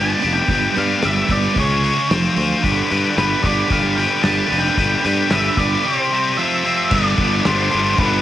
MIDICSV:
0, 0, Header, 1, 7, 480
1, 0, Start_track
1, 0, Tempo, 536673
1, 437, Time_signature, 4, 2, 24, 8
1, 7349, End_track
2, 0, Start_track
2, 0, Title_t, "Lead electric guitar"
2, 0, Program_c, 0, 29
2, 0, Note_on_c, 0, 81, 91
2, 294, Note_off_c, 0, 81, 0
2, 297, Note_on_c, 0, 79, 82
2, 693, Note_off_c, 0, 79, 0
2, 697, Note_on_c, 0, 77, 87
2, 934, Note_off_c, 0, 77, 0
2, 939, Note_on_c, 0, 76, 76
2, 1176, Note_off_c, 0, 76, 0
2, 1183, Note_on_c, 0, 74, 80
2, 1418, Note_off_c, 0, 74, 0
2, 1427, Note_on_c, 0, 73, 78
2, 1861, Note_off_c, 0, 73, 0
2, 2841, Note_on_c, 0, 71, 86
2, 3064, Note_on_c, 0, 74, 82
2, 3088, Note_off_c, 0, 71, 0
2, 3295, Note_off_c, 0, 74, 0
2, 3323, Note_on_c, 0, 77, 96
2, 3541, Note_off_c, 0, 77, 0
2, 3545, Note_on_c, 0, 79, 106
2, 3775, Note_off_c, 0, 79, 0
2, 3782, Note_on_c, 0, 81, 100
2, 4107, Note_off_c, 0, 81, 0
2, 4111, Note_on_c, 0, 79, 100
2, 4505, Note_off_c, 0, 79, 0
2, 4516, Note_on_c, 0, 79, 93
2, 4751, Note_on_c, 0, 76, 84
2, 4765, Note_off_c, 0, 79, 0
2, 4988, Note_off_c, 0, 76, 0
2, 4991, Note_on_c, 0, 74, 82
2, 5218, Note_on_c, 0, 72, 70
2, 5242, Note_off_c, 0, 74, 0
2, 5674, Note_off_c, 0, 72, 0
2, 5698, Note_on_c, 0, 76, 99
2, 6177, Note_off_c, 0, 76, 0
2, 6181, Note_on_c, 0, 74, 84
2, 6671, Note_on_c, 0, 72, 87
2, 6683, Note_off_c, 0, 74, 0
2, 7145, Note_off_c, 0, 72, 0
2, 7149, Note_on_c, 0, 71, 92
2, 7349, Note_off_c, 0, 71, 0
2, 7349, End_track
3, 0, Start_track
3, 0, Title_t, "Clean electric guitar"
3, 0, Program_c, 1, 27
3, 0, Note_on_c, 1, 55, 66
3, 0, Note_on_c, 1, 62, 68
3, 0, Note_on_c, 1, 67, 71
3, 185, Note_off_c, 1, 62, 0
3, 199, Note_off_c, 1, 55, 0
3, 675, Note_off_c, 1, 67, 0
3, 7349, End_track
4, 0, Start_track
4, 0, Title_t, "Distorted electric guitar"
4, 0, Program_c, 2, 30
4, 0, Note_on_c, 2, 55, 84
4, 0, Note_on_c, 2, 59, 79
4, 0, Note_on_c, 2, 62, 80
4, 0, Note_on_c, 2, 67, 95
4, 178, Note_off_c, 2, 55, 0
4, 185, Note_off_c, 2, 59, 0
4, 189, Note_on_c, 2, 55, 74
4, 192, Note_off_c, 2, 62, 0
4, 195, Note_off_c, 2, 67, 0
4, 196, Note_on_c, 2, 59, 68
4, 202, Note_on_c, 2, 62, 73
4, 206, Note_on_c, 2, 67, 90
4, 418, Note_off_c, 2, 55, 0
4, 427, Note_off_c, 2, 59, 0
4, 429, Note_on_c, 2, 55, 89
4, 431, Note_off_c, 2, 67, 0
4, 432, Note_off_c, 2, 62, 0
4, 437, Note_on_c, 2, 59, 90
4, 442, Note_on_c, 2, 67, 100
4, 443, Note_on_c, 2, 62, 91
4, 664, Note_off_c, 2, 55, 0
4, 667, Note_off_c, 2, 59, 0
4, 675, Note_off_c, 2, 62, 0
4, 675, Note_on_c, 2, 55, 76
4, 678, Note_on_c, 2, 59, 78
4, 679, Note_off_c, 2, 67, 0
4, 685, Note_on_c, 2, 62, 84
4, 690, Note_on_c, 2, 67, 73
4, 897, Note_off_c, 2, 55, 0
4, 903, Note_off_c, 2, 59, 0
4, 907, Note_on_c, 2, 55, 75
4, 911, Note_off_c, 2, 62, 0
4, 914, Note_on_c, 2, 59, 80
4, 917, Note_off_c, 2, 67, 0
4, 921, Note_on_c, 2, 62, 84
4, 928, Note_on_c, 2, 67, 91
4, 1138, Note_off_c, 2, 55, 0
4, 1145, Note_off_c, 2, 59, 0
4, 1148, Note_on_c, 2, 55, 79
4, 1154, Note_off_c, 2, 62, 0
4, 1156, Note_on_c, 2, 59, 73
4, 1157, Note_off_c, 2, 67, 0
4, 1165, Note_on_c, 2, 62, 89
4, 1168, Note_on_c, 2, 67, 84
4, 1379, Note_off_c, 2, 55, 0
4, 1383, Note_off_c, 2, 59, 0
4, 1388, Note_off_c, 2, 62, 0
4, 1389, Note_off_c, 2, 67, 0
4, 1397, Note_on_c, 2, 49, 92
4, 1401, Note_on_c, 2, 56, 77
4, 1409, Note_on_c, 2, 61, 102
4, 1418, Note_on_c, 2, 68, 90
4, 1622, Note_off_c, 2, 49, 0
4, 1632, Note_off_c, 2, 56, 0
4, 1633, Note_on_c, 2, 49, 66
4, 1637, Note_off_c, 2, 68, 0
4, 1638, Note_off_c, 2, 61, 0
4, 1643, Note_on_c, 2, 56, 72
4, 1648, Note_on_c, 2, 68, 71
4, 1649, Note_on_c, 2, 61, 72
4, 1862, Note_off_c, 2, 49, 0
4, 1867, Note_off_c, 2, 56, 0
4, 1869, Note_off_c, 2, 68, 0
4, 1870, Note_off_c, 2, 61, 0
4, 1870, Note_on_c, 2, 53, 83
4, 1873, Note_on_c, 2, 60, 88
4, 1884, Note_on_c, 2, 65, 85
4, 1893, Note_on_c, 2, 72, 90
4, 2099, Note_off_c, 2, 53, 0
4, 2101, Note_off_c, 2, 60, 0
4, 2110, Note_on_c, 2, 53, 86
4, 2111, Note_off_c, 2, 65, 0
4, 2112, Note_on_c, 2, 60, 88
4, 2118, Note_off_c, 2, 72, 0
4, 2121, Note_on_c, 2, 65, 87
4, 2129, Note_on_c, 2, 72, 90
4, 2340, Note_off_c, 2, 53, 0
4, 2341, Note_off_c, 2, 60, 0
4, 2346, Note_off_c, 2, 65, 0
4, 2350, Note_off_c, 2, 72, 0
4, 2351, Note_on_c, 2, 59, 82
4, 2352, Note_on_c, 2, 55, 85
4, 2363, Note_on_c, 2, 62, 99
4, 2366, Note_on_c, 2, 67, 99
4, 2371, Note_on_c, 2, 71, 99
4, 2591, Note_off_c, 2, 55, 0
4, 2591, Note_off_c, 2, 59, 0
4, 2593, Note_off_c, 2, 62, 0
4, 2595, Note_on_c, 2, 55, 71
4, 2600, Note_off_c, 2, 71, 0
4, 2601, Note_on_c, 2, 59, 71
4, 2603, Note_off_c, 2, 67, 0
4, 2603, Note_on_c, 2, 62, 79
4, 2607, Note_on_c, 2, 67, 88
4, 2611, Note_on_c, 2, 71, 96
4, 2820, Note_off_c, 2, 55, 0
4, 2826, Note_off_c, 2, 59, 0
4, 2828, Note_off_c, 2, 62, 0
4, 2831, Note_on_c, 2, 55, 84
4, 2835, Note_off_c, 2, 67, 0
4, 2836, Note_on_c, 2, 59, 79
4, 2839, Note_off_c, 2, 71, 0
4, 2839, Note_on_c, 2, 62, 82
4, 2846, Note_on_c, 2, 67, 100
4, 2850, Note_on_c, 2, 71, 86
4, 3061, Note_off_c, 2, 55, 0
4, 3064, Note_off_c, 2, 59, 0
4, 3070, Note_off_c, 2, 62, 0
4, 3071, Note_on_c, 2, 55, 69
4, 3074, Note_on_c, 2, 59, 84
4, 3076, Note_off_c, 2, 67, 0
4, 3081, Note_on_c, 2, 62, 76
4, 3085, Note_off_c, 2, 71, 0
4, 3087, Note_on_c, 2, 67, 84
4, 3095, Note_on_c, 2, 71, 78
4, 3296, Note_off_c, 2, 55, 0
4, 3306, Note_off_c, 2, 59, 0
4, 3307, Note_on_c, 2, 55, 86
4, 3316, Note_off_c, 2, 62, 0
4, 3316, Note_on_c, 2, 59, 91
4, 3317, Note_off_c, 2, 67, 0
4, 3322, Note_off_c, 2, 71, 0
4, 3326, Note_on_c, 2, 62, 96
4, 3328, Note_on_c, 2, 67, 94
4, 3333, Note_on_c, 2, 71, 101
4, 3543, Note_off_c, 2, 55, 0
4, 3549, Note_off_c, 2, 59, 0
4, 3552, Note_off_c, 2, 62, 0
4, 3554, Note_on_c, 2, 55, 65
4, 3560, Note_on_c, 2, 59, 69
4, 3563, Note_on_c, 2, 62, 76
4, 3564, Note_off_c, 2, 71, 0
4, 3565, Note_off_c, 2, 67, 0
4, 3575, Note_on_c, 2, 71, 84
4, 3576, Note_on_c, 2, 67, 88
4, 3781, Note_off_c, 2, 55, 0
4, 3789, Note_off_c, 2, 59, 0
4, 3791, Note_off_c, 2, 62, 0
4, 3792, Note_on_c, 2, 55, 80
4, 3799, Note_off_c, 2, 67, 0
4, 3799, Note_on_c, 2, 59, 68
4, 3802, Note_on_c, 2, 62, 83
4, 3804, Note_off_c, 2, 71, 0
4, 3810, Note_on_c, 2, 67, 89
4, 3815, Note_on_c, 2, 71, 82
4, 4016, Note_off_c, 2, 55, 0
4, 4022, Note_off_c, 2, 59, 0
4, 4027, Note_on_c, 2, 55, 83
4, 4031, Note_off_c, 2, 62, 0
4, 4032, Note_on_c, 2, 59, 85
4, 4038, Note_off_c, 2, 67, 0
4, 4038, Note_off_c, 2, 71, 0
4, 4042, Note_on_c, 2, 62, 85
4, 4049, Note_on_c, 2, 67, 94
4, 4049, Note_on_c, 2, 71, 98
4, 4252, Note_off_c, 2, 55, 0
4, 4261, Note_off_c, 2, 59, 0
4, 4263, Note_on_c, 2, 55, 91
4, 4265, Note_off_c, 2, 62, 0
4, 4266, Note_off_c, 2, 67, 0
4, 4271, Note_off_c, 2, 71, 0
4, 4272, Note_on_c, 2, 59, 104
4, 4276, Note_on_c, 2, 62, 100
4, 4277, Note_on_c, 2, 67, 109
4, 4282, Note_on_c, 2, 71, 104
4, 4490, Note_off_c, 2, 55, 0
4, 4499, Note_off_c, 2, 59, 0
4, 4500, Note_on_c, 2, 55, 74
4, 4503, Note_off_c, 2, 62, 0
4, 4510, Note_on_c, 2, 59, 71
4, 4511, Note_off_c, 2, 71, 0
4, 4513, Note_off_c, 2, 67, 0
4, 4514, Note_on_c, 2, 62, 75
4, 4522, Note_on_c, 2, 71, 86
4, 4524, Note_on_c, 2, 67, 82
4, 4736, Note_off_c, 2, 55, 0
4, 4737, Note_off_c, 2, 59, 0
4, 4746, Note_off_c, 2, 62, 0
4, 4746, Note_on_c, 2, 55, 84
4, 4747, Note_on_c, 2, 59, 80
4, 4748, Note_off_c, 2, 67, 0
4, 4755, Note_off_c, 2, 71, 0
4, 4756, Note_on_c, 2, 62, 83
4, 4759, Note_on_c, 2, 67, 86
4, 4766, Note_on_c, 2, 71, 86
4, 4978, Note_off_c, 2, 55, 0
4, 4980, Note_off_c, 2, 59, 0
4, 4989, Note_off_c, 2, 62, 0
4, 4989, Note_on_c, 2, 55, 69
4, 4991, Note_off_c, 2, 67, 0
4, 4991, Note_on_c, 2, 59, 75
4, 5000, Note_on_c, 2, 62, 85
4, 5001, Note_off_c, 2, 71, 0
4, 5001, Note_on_c, 2, 67, 77
4, 5011, Note_on_c, 2, 71, 88
4, 5219, Note_off_c, 2, 55, 0
4, 5221, Note_off_c, 2, 59, 0
4, 5225, Note_off_c, 2, 62, 0
4, 5226, Note_off_c, 2, 67, 0
4, 5231, Note_off_c, 2, 71, 0
4, 5231, Note_on_c, 2, 48, 82
4, 5236, Note_on_c, 2, 55, 97
4, 5246, Note_on_c, 2, 60, 99
4, 5248, Note_on_c, 2, 67, 108
4, 5458, Note_off_c, 2, 48, 0
4, 5459, Note_off_c, 2, 55, 0
4, 5469, Note_off_c, 2, 60, 0
4, 5469, Note_on_c, 2, 48, 67
4, 5470, Note_on_c, 2, 55, 68
4, 5477, Note_off_c, 2, 67, 0
4, 5479, Note_on_c, 2, 60, 81
4, 5488, Note_on_c, 2, 67, 69
4, 5699, Note_off_c, 2, 48, 0
4, 5700, Note_off_c, 2, 55, 0
4, 5704, Note_off_c, 2, 60, 0
4, 5705, Note_on_c, 2, 53, 98
4, 5709, Note_off_c, 2, 67, 0
4, 5718, Note_on_c, 2, 60, 109
4, 5718, Note_on_c, 2, 65, 100
4, 5724, Note_on_c, 2, 72, 97
4, 5926, Note_off_c, 2, 53, 0
4, 5935, Note_off_c, 2, 60, 0
4, 5937, Note_on_c, 2, 53, 92
4, 5941, Note_off_c, 2, 65, 0
4, 5945, Note_on_c, 2, 60, 97
4, 5947, Note_off_c, 2, 72, 0
4, 5952, Note_on_c, 2, 65, 92
4, 5958, Note_on_c, 2, 72, 88
4, 6173, Note_off_c, 2, 53, 0
4, 6176, Note_on_c, 2, 43, 102
4, 6177, Note_off_c, 2, 60, 0
4, 6180, Note_off_c, 2, 65, 0
4, 6183, Note_off_c, 2, 72, 0
4, 6186, Note_on_c, 2, 50, 90
4, 6194, Note_on_c, 2, 55, 104
4, 6199, Note_on_c, 2, 59, 91
4, 6209, Note_on_c, 2, 62, 108
4, 6409, Note_off_c, 2, 62, 0
4, 6420, Note_on_c, 2, 62, 65
4, 6428, Note_off_c, 2, 59, 0
4, 6439, Note_on_c, 2, 59, 60
4, 6445, Note_off_c, 2, 55, 0
4, 6456, Note_on_c, 2, 55, 54
4, 6643, Note_off_c, 2, 50, 0
4, 6654, Note_on_c, 2, 50, 75
4, 6657, Note_off_c, 2, 55, 0
4, 6659, Note_off_c, 2, 59, 0
4, 6666, Note_off_c, 2, 43, 0
4, 6668, Note_on_c, 2, 55, 76
4, 6670, Note_on_c, 2, 59, 86
4, 6674, Note_off_c, 2, 62, 0
4, 6685, Note_on_c, 2, 62, 77
4, 6887, Note_off_c, 2, 62, 0
4, 6898, Note_on_c, 2, 62, 76
4, 6905, Note_off_c, 2, 59, 0
4, 6915, Note_off_c, 2, 55, 0
4, 6916, Note_on_c, 2, 59, 61
4, 6926, Note_on_c, 2, 55, 60
4, 7133, Note_on_c, 2, 43, 89
4, 7138, Note_off_c, 2, 50, 0
4, 7143, Note_off_c, 2, 55, 0
4, 7146, Note_off_c, 2, 59, 0
4, 7149, Note_on_c, 2, 50, 90
4, 7153, Note_off_c, 2, 62, 0
4, 7153, Note_on_c, 2, 55, 98
4, 7157, Note_on_c, 2, 59, 98
4, 7163, Note_on_c, 2, 62, 105
4, 7349, Note_off_c, 2, 43, 0
4, 7349, Note_off_c, 2, 50, 0
4, 7349, Note_off_c, 2, 55, 0
4, 7349, Note_off_c, 2, 59, 0
4, 7349, Note_off_c, 2, 62, 0
4, 7349, End_track
5, 0, Start_track
5, 0, Title_t, "Distorted electric guitar"
5, 0, Program_c, 3, 30
5, 2362, Note_on_c, 3, 43, 80
5, 2365, Note_on_c, 3, 50, 102
5, 2592, Note_off_c, 3, 43, 0
5, 2596, Note_off_c, 3, 50, 0
5, 2603, Note_on_c, 3, 43, 89
5, 2607, Note_on_c, 3, 50, 89
5, 2838, Note_off_c, 3, 43, 0
5, 2842, Note_off_c, 3, 50, 0
5, 2849, Note_on_c, 3, 43, 66
5, 2852, Note_on_c, 3, 50, 78
5, 3081, Note_off_c, 3, 43, 0
5, 3086, Note_off_c, 3, 50, 0
5, 3092, Note_on_c, 3, 43, 78
5, 3096, Note_on_c, 3, 50, 84
5, 3304, Note_off_c, 3, 43, 0
5, 3315, Note_off_c, 3, 50, 0
5, 3315, Note_on_c, 3, 43, 88
5, 3326, Note_on_c, 3, 50, 89
5, 3544, Note_off_c, 3, 43, 0
5, 3555, Note_off_c, 3, 50, 0
5, 3555, Note_on_c, 3, 43, 91
5, 3565, Note_on_c, 3, 50, 80
5, 3795, Note_off_c, 3, 43, 0
5, 3802, Note_off_c, 3, 50, 0
5, 3806, Note_on_c, 3, 43, 72
5, 3812, Note_on_c, 3, 50, 81
5, 4031, Note_off_c, 3, 43, 0
5, 4037, Note_off_c, 3, 50, 0
5, 4042, Note_on_c, 3, 43, 76
5, 4047, Note_on_c, 3, 50, 83
5, 4269, Note_off_c, 3, 43, 0
5, 4274, Note_off_c, 3, 50, 0
5, 4280, Note_on_c, 3, 43, 85
5, 4284, Note_on_c, 3, 50, 91
5, 4492, Note_off_c, 3, 43, 0
5, 4502, Note_off_c, 3, 50, 0
5, 4503, Note_on_c, 3, 43, 80
5, 4513, Note_on_c, 3, 50, 95
5, 4730, Note_off_c, 3, 43, 0
5, 4739, Note_off_c, 3, 50, 0
5, 4741, Note_on_c, 3, 43, 78
5, 4750, Note_on_c, 3, 50, 91
5, 4983, Note_off_c, 3, 43, 0
5, 4987, Note_off_c, 3, 50, 0
5, 4994, Note_on_c, 3, 43, 89
5, 4998, Note_on_c, 3, 50, 93
5, 5222, Note_off_c, 3, 43, 0
5, 5222, Note_off_c, 3, 50, 0
5, 5705, Note_on_c, 3, 41, 87
5, 5716, Note_on_c, 3, 48, 98
5, 5931, Note_off_c, 3, 41, 0
5, 5940, Note_off_c, 3, 48, 0
5, 5942, Note_on_c, 3, 41, 83
5, 5951, Note_on_c, 3, 48, 89
5, 6172, Note_off_c, 3, 41, 0
5, 6180, Note_off_c, 3, 48, 0
5, 7349, End_track
6, 0, Start_track
6, 0, Title_t, "Fingered electric bass"
6, 0, Program_c, 4, 33
6, 0, Note_on_c, 4, 31, 80
6, 121, Note_off_c, 4, 31, 0
6, 217, Note_on_c, 4, 29, 79
6, 360, Note_off_c, 4, 29, 0
6, 442, Note_on_c, 4, 31, 84
6, 589, Note_off_c, 4, 31, 0
6, 692, Note_on_c, 4, 43, 90
6, 836, Note_off_c, 4, 43, 0
6, 939, Note_on_c, 4, 31, 87
6, 1081, Note_off_c, 4, 31, 0
6, 1157, Note_on_c, 4, 31, 74
6, 1306, Note_off_c, 4, 31, 0
6, 1401, Note_on_c, 4, 37, 82
6, 1697, Note_off_c, 4, 37, 0
6, 1887, Note_on_c, 4, 29, 94
6, 2033, Note_off_c, 4, 29, 0
6, 2117, Note_on_c, 4, 38, 83
6, 2266, Note_off_c, 4, 38, 0
6, 2364, Note_on_c, 4, 31, 86
6, 2511, Note_off_c, 4, 31, 0
6, 2607, Note_on_c, 4, 43, 82
6, 2753, Note_off_c, 4, 43, 0
6, 2838, Note_on_c, 4, 31, 85
6, 2987, Note_off_c, 4, 31, 0
6, 3083, Note_on_c, 4, 31, 83
6, 3230, Note_off_c, 4, 31, 0
6, 3322, Note_on_c, 4, 31, 77
6, 3618, Note_off_c, 4, 31, 0
6, 3793, Note_on_c, 4, 31, 88
6, 3943, Note_off_c, 4, 31, 0
6, 4039, Note_on_c, 4, 29, 69
6, 4187, Note_off_c, 4, 29, 0
6, 4274, Note_on_c, 4, 31, 92
6, 4424, Note_off_c, 4, 31, 0
6, 4516, Note_on_c, 4, 43, 89
6, 4665, Note_off_c, 4, 43, 0
6, 4756, Note_on_c, 4, 31, 80
6, 4905, Note_off_c, 4, 31, 0
6, 4987, Note_on_c, 4, 31, 84
6, 5139, Note_off_c, 4, 31, 0
6, 6190, Note_on_c, 4, 31, 94
6, 6382, Note_off_c, 4, 31, 0
6, 6432, Note_on_c, 4, 31, 83
6, 6622, Note_off_c, 4, 31, 0
6, 6680, Note_on_c, 4, 31, 90
6, 6867, Note_off_c, 4, 31, 0
6, 6926, Note_on_c, 4, 31, 85
6, 7111, Note_off_c, 4, 31, 0
6, 7140, Note_on_c, 4, 31, 94
6, 7335, Note_off_c, 4, 31, 0
6, 7349, End_track
7, 0, Start_track
7, 0, Title_t, "Drums"
7, 191, Note_on_c, 9, 46, 51
7, 280, Note_off_c, 9, 46, 0
7, 432, Note_on_c, 9, 46, 68
7, 433, Note_on_c, 9, 36, 97
7, 521, Note_off_c, 9, 46, 0
7, 522, Note_off_c, 9, 36, 0
7, 678, Note_on_c, 9, 46, 57
7, 679, Note_on_c, 9, 38, 35
7, 767, Note_off_c, 9, 46, 0
7, 768, Note_off_c, 9, 38, 0
7, 917, Note_on_c, 9, 46, 66
7, 918, Note_on_c, 9, 38, 103
7, 1006, Note_off_c, 9, 46, 0
7, 1007, Note_off_c, 9, 38, 0
7, 1152, Note_on_c, 9, 46, 56
7, 1155, Note_on_c, 9, 36, 88
7, 1242, Note_off_c, 9, 46, 0
7, 1244, Note_off_c, 9, 36, 0
7, 1397, Note_on_c, 9, 36, 100
7, 1401, Note_on_c, 9, 46, 75
7, 1486, Note_off_c, 9, 36, 0
7, 1490, Note_off_c, 9, 46, 0
7, 1643, Note_on_c, 9, 46, 56
7, 1733, Note_off_c, 9, 46, 0
7, 1888, Note_on_c, 9, 38, 118
7, 1888, Note_on_c, 9, 46, 74
7, 1977, Note_off_c, 9, 46, 0
7, 1978, Note_off_c, 9, 38, 0
7, 2122, Note_on_c, 9, 46, 49
7, 2212, Note_off_c, 9, 46, 0
7, 2360, Note_on_c, 9, 36, 104
7, 2367, Note_on_c, 9, 46, 57
7, 2450, Note_off_c, 9, 36, 0
7, 2457, Note_off_c, 9, 46, 0
7, 2605, Note_on_c, 9, 46, 51
7, 2694, Note_off_c, 9, 46, 0
7, 2845, Note_on_c, 9, 46, 59
7, 2846, Note_on_c, 9, 38, 108
7, 2934, Note_off_c, 9, 46, 0
7, 2935, Note_off_c, 9, 38, 0
7, 3074, Note_on_c, 9, 46, 49
7, 3075, Note_on_c, 9, 36, 88
7, 3163, Note_off_c, 9, 46, 0
7, 3164, Note_off_c, 9, 36, 0
7, 3309, Note_on_c, 9, 46, 60
7, 3314, Note_on_c, 9, 36, 102
7, 3399, Note_off_c, 9, 46, 0
7, 3403, Note_off_c, 9, 36, 0
7, 3432, Note_on_c, 9, 38, 29
7, 3521, Note_off_c, 9, 38, 0
7, 3558, Note_on_c, 9, 46, 53
7, 3647, Note_off_c, 9, 46, 0
7, 3788, Note_on_c, 9, 46, 75
7, 3789, Note_on_c, 9, 38, 115
7, 3878, Note_off_c, 9, 46, 0
7, 3879, Note_off_c, 9, 38, 0
7, 4043, Note_on_c, 9, 46, 51
7, 4132, Note_off_c, 9, 46, 0
7, 4271, Note_on_c, 9, 36, 100
7, 4280, Note_on_c, 9, 46, 66
7, 4361, Note_off_c, 9, 36, 0
7, 4369, Note_off_c, 9, 46, 0
7, 4515, Note_on_c, 9, 38, 36
7, 4515, Note_on_c, 9, 46, 63
7, 4604, Note_off_c, 9, 46, 0
7, 4605, Note_off_c, 9, 38, 0
7, 4746, Note_on_c, 9, 46, 66
7, 4747, Note_on_c, 9, 38, 110
7, 4835, Note_off_c, 9, 46, 0
7, 4836, Note_off_c, 9, 38, 0
7, 4984, Note_on_c, 9, 46, 60
7, 4985, Note_on_c, 9, 36, 84
7, 5073, Note_off_c, 9, 46, 0
7, 5074, Note_off_c, 9, 36, 0
7, 6178, Note_on_c, 9, 49, 113
7, 6178, Note_on_c, 9, 57, 68
7, 6183, Note_on_c, 9, 36, 107
7, 6267, Note_off_c, 9, 49, 0
7, 6267, Note_off_c, 9, 57, 0
7, 6272, Note_off_c, 9, 36, 0
7, 6416, Note_on_c, 9, 57, 55
7, 6422, Note_on_c, 9, 36, 90
7, 6506, Note_off_c, 9, 57, 0
7, 6511, Note_off_c, 9, 36, 0
7, 6664, Note_on_c, 9, 57, 72
7, 6665, Note_on_c, 9, 38, 110
7, 6754, Note_off_c, 9, 57, 0
7, 6755, Note_off_c, 9, 38, 0
7, 6897, Note_on_c, 9, 57, 62
7, 6986, Note_off_c, 9, 57, 0
7, 7137, Note_on_c, 9, 57, 69
7, 7140, Note_on_c, 9, 36, 101
7, 7226, Note_off_c, 9, 57, 0
7, 7230, Note_off_c, 9, 36, 0
7, 7349, End_track
0, 0, End_of_file